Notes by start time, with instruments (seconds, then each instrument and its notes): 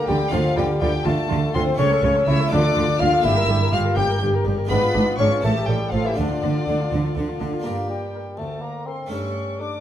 Already playing: harpsichord D4 G4
0.07 double bass section D2, harpsichord D3, cello section D3, bassoon G3, violin section G4 G5, viola section G4
0.28 harpsichord A3 D4 F4, viola section F4, violin section F5
0.32 double bass section D2, harpsichord D3, cello section D3, bassoon F3, violin section F4
0.56 double bass section D2, harpsichord D3, cello section D3, bassoon G3, viola section F4, violin section G4 G5
0.80 double bass section D2, cello section D3, harpsichord D3, bassoon G3, viola section F4, violin section G4 G5
1.05 double bass section D2, cello section D3, harpsichord D3, bassoon A3, viola section F4, violin section A4 A5
1.30 double bass section D2, cello section D3, harpsichord D3, viola section F4
1.54 double bass section D2, cello section D3, harpsichord D3, bassoon C4, viola section F4, violin section C5 C6
1.74 harpsichord A3 E4 A4, bassoon C#4, viola section C#5
1.78 double bass section C#2, cello section C#3, harpsichord C#3, violin section C#5 C#6
1.90 viola section A4
2.02 double bass section C#2, cello section C#3, harpsichord C#3, viola section C#5
2.15 viola section A4
2.26 double bass section C#2, harpsichord C#3, cello section C#3, bassoon E4, viola section C#5, violin section E5 E6
2.39 viola section A4
2.46 harpsichord A3 F4 A4
2.51 double bass section D2, harpsichord D3, cello section D3, bassoon D4, viola section F4, violin section D5 D6
2.63 viola section A4
2.75 double bass section D2, harpsichord D3, cello section D3, viola section F4
2.87 viola section A4
2.99 double bass section D2, harpsichord D3, cello section D3, bassoon F4, viola section F4, violin section F5 F6
3.12 viola section A4
3.19 harpsichord A#3 D4 G4
3.23 double bass section G1, harpsichord G2, cello section G2, bassoon E4, viola section G4, violin section E5 E6
3.36 viola section A#4
3.48 double bass section G1, harpsichord G2, cello section G2, viola section G4
3.61 viola section A#4
3.72 double bass section G1, harpsichord G2, cello section G2, bassoon F4, viola section G4, violin section F5 F6
3.85 viola section A#4
3.96 double bass section G1, harpsichord G2, cello section G2, viola section G4, bassoon G4, violin section G5 G6
4.09 viola section A#4
4.21 double bass section G1, harpsichord G2, cello section G2, viola section G4
4.33 viola section A#4
4.45 double bass section G1, harpsichord G2, cello section G2, viola section G4
4.57 viola section A#4
4.65 harpsichord G#3 D4 F4
4.70 double bass section G#1, harpsichord G#2, cello section G#2, bassoon B3, viola section D4, violin section B4 B5
4.82 viola section F4
4.93 double bass section G#1, harpsichord G#2, cello section G#2, viola section D4
5.06 viola section F4
5.19 double bass section G#1, harpsichord G#2, cello section G#2, bassoon C#4, viola section D4, violin section C#5 C#6
5.31 viola section F4
5.40 double bass section A1, harpsichord A2 C#4 E4, bassoon A3, violin section A4 A5, viola section A4
5.45 cello section A2
5.56 viola section G4
5.68 double bass section A1, harpsichord A2, cello section A2, bassoon G3, violin section G4 G5, viola section A4
5.80 viola section G4
5.92 double bass section A1, harpsichord A2, cello section A2, bassoon F3, violin section F4 F5, viola section A4
6.05 bassoon E3, violin section E4 E5, viola section G4
6.14 double bass section D2, bassoon D3, harpsichord D3 D4 F4, viola section D4, violin section D5
6.18 cello section D3, violin section D4
6.30 viola section F4
6.41 double bass section D2, harpsichord D3, cello section D3, viola section D4
6.55 viola section F4
6.66 double bass section D2, harpsichord D3, cello section D3, viola section D4
6.79 viola section F4
6.91 double bass section D2, harpsichord D3, cello section D3, viola section D4
7.04 viola section F4
7.15 double bass section D2, harpsichord D3, cello section D3, viola section D4
7.29 viola section F4
7.40 double bass section D2, harpsichord D3, cello section D3, viola section D4
7.53 viola section F4
7.60 harpsichord A#3 D4 G4
7.64 harpsichord G2, cello section G2, bassoon A#3, violin section A#5
7.89 bassoon G3, violin section G5
8.14 viola section A#4, violin section D5
8.37 harpsichord D2, cello section D2, bassoon A3, violin section A5
8.61 bassoon A#3, violin section A#5
8.85 bassoon C4, viola section A#4, violin section D5 C6
9.06 harpsichord A3 C#4 A4, bassoon C#4, violin section C#6
9.11 harpsichord G2, cello section G2
9.60 bassoon D4, viola section A4, violin section C#5 D6